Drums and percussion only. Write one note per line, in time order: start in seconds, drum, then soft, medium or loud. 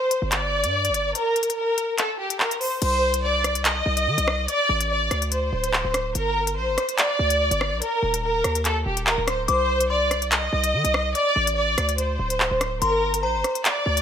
0.11 closed hi-hat medium
0.32 clap loud
0.32 closed hi-hat medium
0.64 closed hi-hat medium
0.85 closed hi-hat medium
0.94 closed hi-hat medium
1.15 closed hi-hat medium
1.36 closed hi-hat medium
1.43 closed hi-hat medium
1.50 closed hi-hat medium
1.78 closed hi-hat medium
1.98 clap medium
1.98 closed hi-hat medium
2.30 closed hi-hat medium
2.40 clap loud
2.51 closed hi-hat medium
2.61 open hi-hat medium
2.82 closed hi-hat medium
2.82 crash loud
3.14 closed hi-hat medium
3.44 cross-stick medium
3.44 closed hi-hat medium
3.55 closed hi-hat medium
3.65 clap loud
3.65 closed hi-hat medium
3.97 closed hi-hat medium
4.18 closed hi-hat medium
4.28 cross-stick loud
4.48 closed hi-hat medium
4.80 closed hi-hat medium
5.11 cross-stick medium
5.11 closed hi-hat medium
5.22 closed hi-hat medium
5.32 closed hi-hat medium
5.64 closed hi-hat medium
5.73 clap loud
5.94 cross-stick loud
5.94 closed hi-hat medium
6.15 closed hi-hat medium
6.47 closed hi-hat medium
6.78 cross-stick medium
6.78 closed hi-hat medium
6.89 closed hi-hat medium
6.98 clap loud
6.98 closed hi-hat medium
7.30 closed hi-hat medium
7.51 closed hi-hat medium
7.61 cross-stick loud
7.82 closed hi-hat medium
8.14 closed hi-hat medium
8.44 cross-stick medium
8.44 closed hi-hat medium
8.55 closed hi-hat medium
8.65 clap medium
8.65 closed hi-hat medium
8.97 closed hi-hat medium
9.07 clap loud
9.28 cross-stick loud
9.28 closed hi-hat medium
9.48 closed hi-hat medium
9.81 closed hi-hat medium
10.11 cross-stick medium
10.11 closed hi-hat medium
10.22 closed hi-hat medium
10.32 clap loud
10.32 closed hi-hat medium
10.64 closed hi-hat medium
10.85 closed hi-hat medium
10.94 cross-stick loud
11.15 closed hi-hat medium
11.47 closed hi-hat medium
11.78 cross-stick medium
11.78 closed hi-hat medium
11.89 closed hi-hat medium
11.98 closed hi-hat medium
12.30 closed hi-hat medium
12.40 clap loud
12.61 cross-stick loud
12.61 closed hi-hat medium
12.82 closed hi-hat medium
13.14 closed hi-hat medium
13.44 cross-stick medium
13.44 closed hi-hat medium
13.55 closed hi-hat medium
13.65 clap loud
13.65 closed hi-hat medium
13.97 closed hi-hat medium